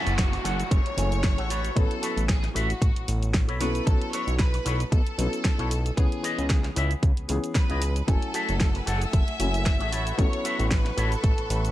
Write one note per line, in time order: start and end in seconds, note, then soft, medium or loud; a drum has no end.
0.00 0.94 F#3 medium
0.00 0.95 A3 medium
0.00 0.95 C#4 medium
0.00 0.95 E4 medium
0.00 0.12 F#4 loud
0.00 0.71 F#4 loud
0.00 0.13 G#4 loud
0.00 0.13 A4 loud
0.00 0.13 E5 loud
0.00 0.95 G#5 loud
0.00 downlifter medium
0.06 0.39 F#1 medium
0.06 closed hi-hat soft
0.06 shaker soft
0.18 kick loud
0.18 snare loud
0.18 closed hi-hat medium
0.18 shaker soft
0.32 muted clean electric guitar stroke medium
0.32 open hi-hat medium
0.44 0.63 F#1 medium
0.44 0.59 F#4 loud
0.44 0.59 G#4 loud
0.44 0.60 A4 loud
0.44 0.60 F#5 loud
0.44 open hi-hat loud
0.44 shaker medium
0.60 closed hi-hat soft
0.60 shaker soft
0.71 0.81 F#1 loud
0.71 1.77 C#5 loud
0.71 muted clean electric guitar stroke soft
0.71 kick loud
0.71 closed hi-hat medium
0.71 shaker soft
0.86 closed hi-hat soft
0.97 1.40 F#1 loud
0.97 1.49 F#3 medium
0.97 1.49 A3 medium
0.97 1.49 C#4 medium
0.97 1.49 E4 medium
0.97 1.49 G#5 medium
0.97 open hi-hat loud
0.97 shaker medium
1.12 closed hi-hat soft
1.12 shaker soft
1.23 kick loud
1.23 snare loud
1.23 closed hi-hat medium
1.23 shaker soft
1.38 1.70 A1 medium
1.38 1.48 F#4 medium
1.38 1.50 G#4 medium
1.38 1.49 A4 medium
1.38 1.51 F#5 medium
1.38 closed hi-hat soft
1.50 1.93 F#4 loud
1.50 1.93 A4 medium
1.50 1.94 B4 medium
1.50 1.94 C#5 loud
1.50 open hi-hat loud
1.50 shaker medium
1.65 closed hi-hat soft
1.65 shaker soft
1.76 1.86 A1 medium
1.76 3.58 F#3 loud
1.76 3.58 B3 medium
1.76 3.58 C#4 medium
1.76 3.58 E4 medium
1.76 2.29 A4 loud
1.76 3.59 A4 loud
1.76 kick loud
1.76 closed hi-hat medium
1.76 shaker soft
1.91 closed hi-hat soft
2.02 2.23 F#4 loud
2.02 2.23 A4 loud
2.02 2.24 B4 loud
2.02 2.24 C#5 loud
2.02 open hi-hat loud
2.02 shaker medium
2.17 2.49 A1 medium
2.17 closed hi-hat soft
2.17 shaker soft
2.29 2.54 G#4 loud
2.29 kick loud
2.29 snare loud
2.29 closed hi-hat medium
2.29 shaker soft
2.43 muted clean electric guitar stroke medium
2.43 snare soft
2.43 closed hi-hat soft
2.54 2.74 A1 medium
2.54 2.69 F#4 loud
2.54 3.30 F#4 medium
2.54 2.70 A4 loud
2.54 2.70 B4 loud
2.54 2.70 E5 loud
2.54 open hi-hat loud
2.54 shaker medium
2.70 closed hi-hat soft
2.70 shaker soft
2.81 2.91 A1 loud
2.81 muted clean electric guitar stroke soft
2.81 kick loud
2.81 closed hi-hat medium
2.81 shaker soft
2.96 3.06 A1 soft
2.96 closed hi-hat soft
3.08 3.50 A1 loud
3.08 open hi-hat loud
3.08 shaker medium
3.23 closed hi-hat soft
3.23 shaker soft
3.34 kick loud
3.34 snare loud
3.34 open hi-hat medium
3.34 shaker soft
3.48 3.81 B1 medium
3.48 3.59 F#4 medium
3.48 3.59 A4 medium
3.48 3.60 B4 medium
3.48 3.60 C#5 medium
3.48 closed hi-hat soft
3.60 3.84 F#3 medium
3.60 3.84 B3 medium
3.60 3.84 C#4 medium
3.60 4.03 E4 medium
3.60 3.85 E4 medium
3.60 4.04 A4 medium
3.60 3.85 A4 loud
3.60 3.85 B4 loud
3.60 4.04 B4 medium
3.60 4.04 C#5 loud
3.60 open hi-hat loud
3.60 shaker medium
3.75 closed hi-hat soft
3.75 shaker soft
3.86 3.97 B1 loud
3.86 5.15 F#3 medium
3.86 5.16 B3 medium
3.86 5.16 C#4 medium
3.86 5.16 E4 medium
3.86 4.13 A4 loud
3.86 5.16 A4 loud
3.86 kick loud
3.86 closed hi-hat medium
3.86 shaker soft
4.02 closed hi-hat soft
4.13 4.33 E4 loud
4.13 4.34 A4 loud
4.13 4.34 B4 loud
4.13 4.40 C#5 loud
4.13 4.34 C#5 loud
4.13 open hi-hat loud
4.13 shaker medium
4.27 4.60 B1 medium
4.27 closed hi-hat soft
4.27 shaker soft
4.39 4.89 B4 loud
4.39 kick loud
4.39 snare loud
4.39 closed hi-hat medium
4.39 shaker soft
4.53 muted clean electric guitar stroke medium
4.53 open hi-hat medium
4.65 4.84 B1 medium
4.65 4.80 E4 loud
4.65 4.80 A4 loud
4.65 4.80 B4 loud
4.65 4.81 C#5 loud
4.65 open hi-hat loud
4.65 shaker medium
4.80 closed hi-hat soft
4.80 shaker soft
4.91 5.02 B1 loud
4.91 5.94 A4 loud
4.91 muted clean electric guitar stroke soft
4.91 kick loud
4.91 closed hi-hat medium
4.91 shaker soft
5.07 closed hi-hat soft
5.18 5.28 B1 loud
5.18 5.95 F#3 medium
5.18 5.95 B3 medium
5.18 5.95 C#4 medium
5.18 5.95 E4 medium
5.18 5.96 A4 medium
5.18 open hi-hat loud
5.18 shaker medium
5.33 closed hi-hat soft
5.33 shaker soft
5.45 kick loud
5.45 snare loud
5.45 closed hi-hat medium
5.45 shaker soft
5.58 5.91 B1 medium
5.58 5.71 E4 medium
5.58 5.71 A4 medium
5.58 5.72 B4 medium
5.58 5.72 C#5 loud
5.58 closed hi-hat soft
5.71 open hi-hat loud
5.71 shaker medium
5.85 muted clean electric guitar stroke soft
5.85 closed hi-hat soft
5.85 shaker soft
5.97 6.07 C#2 medium
5.97 7.26 E3 loud
5.97 7.27 B3 medium
5.97 7.27 C#4 medium
5.97 6.77 G#4 medium
5.97 7.27 G#4 loud
5.97 kick loud
5.97 closed hi-hat medium
5.97 shaker soft
6.12 closed hi-hat soft
6.23 6.44 E4 loud
6.23 6.44 B4 loud
6.23 6.44 C#5 loud
6.23 6.45 D#5 loud
6.23 open hi-hat loud
6.23 shaker medium
6.38 6.70 C#2 medium
6.38 closed hi-hat soft
6.38 shaker soft
6.50 kick loud
6.50 snare loud
6.50 closed hi-hat medium
6.50 shaker soft
6.63 muted clean electric guitar stroke medium
6.63 snare soft
6.63 closed hi-hat soft
6.76 6.95 C#2 medium
6.76 6.90 E4 loud
6.76 6.91 B4 loud
6.76 6.91 C#5 loud
6.76 6.91 E5 loud
6.76 open hi-hat loud
6.76 shaker medium
6.91 closed hi-hat soft
6.91 shaker soft
7.02 7.13 C#2 loud
7.02 muted clean electric guitar stroke soft
7.02 kick loud
7.02 closed hi-hat medium
7.02 shaker soft
7.17 7.27 C#2 soft
7.17 closed hi-hat soft
7.28 7.39 C#2 loud
7.28 8.05 E3 medium
7.28 8.05 B3 medium
7.28 8.05 C#4 medium
7.28 8.06 G#4 medium
7.28 open hi-hat loud
7.28 shaker medium
7.44 closed hi-hat soft
7.44 shaker soft
7.55 8.04 B4 loud
7.55 kick loud
7.55 snare loud
7.55 open hi-hat medium
7.55 shaker soft
7.69 8.02 C#2 medium
7.69 7.81 E4 medium
7.69 7.82 B4 medium
7.69 7.82 C#5 medium
7.69 7.82 D#5 medium
7.69 closed hi-hat soft
7.82 open hi-hat loud
7.82 shaker medium
7.95 muted clean electric guitar stroke soft
7.95 closed hi-hat soft
7.95 shaker soft
8.07 8.18 F#1 loud
8.07 9.37 F#3 medium
8.07 9.37 A3 medium
8.07 9.91 A3 medium
8.07 9.37 C#4 medium
8.07 9.37 E4 medium
8.07 8.78 A4 loud
8.07 11.71 F#5 medium
8.07 9.91 G#5 medium
8.07 9.37 G#5 loud
8.07 9.91 E6 medium
8.07 kick loud
8.07 closed hi-hat medium
8.07 shaker soft
8.22 closed hi-hat soft
8.34 8.54 F#4 loud
8.34 8.55 G#4 loud
8.34 8.55 A4 loud
8.34 8.55 E5 loud
8.34 open hi-hat loud
8.34 shaker medium
8.49 8.81 F#1 medium
8.49 closed hi-hat soft
8.49 shaker soft
8.60 kick loud
8.60 snare loud
8.60 closed hi-hat medium
8.60 shaker soft
8.74 8.86 B4 medium
8.74 muted clean electric guitar stroke medium
8.74 open hi-hat medium
8.86 9.06 F#1 medium
8.86 9.01 F#4 loud
8.86 9.01 G#4 loud
8.86 8.96 A4 medium
8.86 9.02 A4 loud
8.86 9.02 F#5 loud
8.86 open hi-hat loud
8.86 shaker medium
8.96 9.05 G#4 medium
9.02 9.13 A4 medium
9.02 closed hi-hat soft
9.02 shaker soft
9.13 9.23 F#1 medium
9.13 10.19 E5 loud
9.13 muted clean electric guitar stroke soft
9.13 kick loud
9.13 closed hi-hat medium
9.13 shaker soft
9.28 closed hi-hat soft
9.40 9.82 F#1 loud
9.40 9.91 F#3 medium
9.40 9.91 A3 medium
9.40 9.91 C#4 medium
9.40 9.91 E4 medium
9.40 9.91 G#5 medium
9.40 open hi-hat loud
9.40 shaker medium
9.54 closed hi-hat soft
9.54 shaker soft
9.66 kick loud
9.66 snare loud
9.66 closed hi-hat medium
9.66 shaker soft
9.80 10.13 A1 medium
9.80 9.90 F#4 medium
9.80 9.92 G#4 medium
9.80 9.91 A4 medium
9.80 9.93 E5 medium
9.80 closed hi-hat soft
9.91 10.35 F#4 medium
9.91 10.35 A4 medium
9.91 11.71 B4 medium
9.91 10.36 B4 medium
9.91 10.36 C#5 loud
9.91 11.71 B5 medium
9.91 11.71 C#6 medium
9.91 open hi-hat loud
9.91 shaker medium
10.07 closed hi-hat soft
10.07 shaker soft
10.18 10.28 A1 loud
10.18 11.71 F#3 loud
10.18 11.71 B3 medium
10.18 11.71 C#4 medium
10.18 11.71 E4 medium
10.18 11.71 A4 loud
10.18 10.71 C#5 loud
10.18 kick loud
10.18 closed hi-hat medium
10.18 shaker soft
10.33 closed hi-hat soft
10.44 10.65 F#4 loud
10.44 10.65 A4 loud
10.44 10.66 B4 loud
10.44 10.66 E5 loud
10.44 open hi-hat loud
10.44 shaker medium
10.59 10.91 A1 medium
10.59 closed hi-hat soft
10.59 shaker soft
10.71 10.96 B4 loud
10.71 kick loud
10.71 snare loud
10.71 closed hi-hat medium
10.71 shaker soft
10.85 muted clean electric guitar stroke loud
10.85 snare soft
10.85 closed hi-hat soft
10.97 11.16 A1 medium
10.97 11.12 F#4 loud
10.97 11.12 A4 loud
10.97 11.71 A4 loud
10.97 11.12 B4 loud
10.97 11.12 C#5 loud
10.97 open hi-hat loud
10.97 shaker medium
11.12 closed hi-hat soft
11.12 shaker soft
11.23 11.33 A1 medium
11.23 muted clean electric guitar stroke soft
11.23 kick loud
11.23 closed hi-hat medium
11.23 shaker soft
11.38 11.48 A1 soft
11.38 closed hi-hat soft
11.50 11.71 A1 loud
11.50 open hi-hat loud
11.50 shaker medium
11.65 closed hi-hat soft
11.65 shaker soft